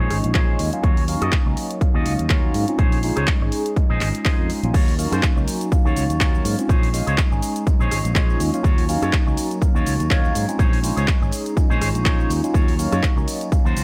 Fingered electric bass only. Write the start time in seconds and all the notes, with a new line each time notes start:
0.10 G#1
0.24 A#1
0.60 D#2
0.83 D#2
1.22 F#2
1.46 C#2
1.81 muted fingered electric bass stroke
1.95 D#2
2.06 C#2
2.20 D#2
2.54 G#2
2.79 A#1
3.17 C#2
3.41 G#1
3.90 A#1
4.01 G#1
4.39 F2
4.50 muted fingered electric bass stroke
4.63 A#1
4.74 D#2
5.12 F#2
5.37 C#2
5.72 muted fingered electric bass stroke
5.85 D#2
5.96 C#2
6.09 D#2
6.45 G#2
6.69 A#1
7.07 C#2
7.32 G#1
7.80 A#1
7.91 G#1
8.05 A#1
8.40 D#2
8.64 D#2
9.02 F#2
9.27 C#2
9.62 muted fingered electric bass stroke
9.75 D#2
9.86 C#2
10.00 D#2
10.35 G#2
10.59 A#1
10.97 C#2
11.21 G#1
11.70 A#1
11.81 G#1
11.94 A#1
12.30 D#2
12.54 D#2
12.92 F#2
13.16 C#2
13.52 muted fingered electric bass stroke
13.65 D#2
13.76 C#2